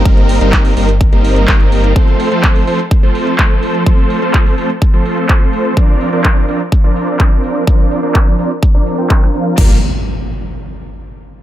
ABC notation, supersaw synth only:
X:1
M:4/4
L:1/16
Q:1/4=126
K:Gm
V:1 name="Supersaw synth"
[G,B,CEB]3 [G,B,CEB]3 [G,B,CEB] z2 [G,B,CEB]3 [G,B,CEB]4 | [F,A,CAc]3 [F,A,CAc]3 [F,A,CAc] z2 [F,A,CAc]3 [F,A,CAc]4 | [F,A,CAc]3 [F,A,CAc]3 [F,A,CAc] z2 [F,A,CAc]3 [F,A,CAc]4 | [F,CDBd]3 [F,CDBd]3 [F,CDBd] z2 [F,CDBd]3 [F,CDBd]4 |
[F,CDBd]3 [F,CDBd]3 [F,CDBd] z2 [F,CDBd]2 [F,CDBg]3 [F,CDBf]2 | [G,B,DFB]2 z12 z2 |]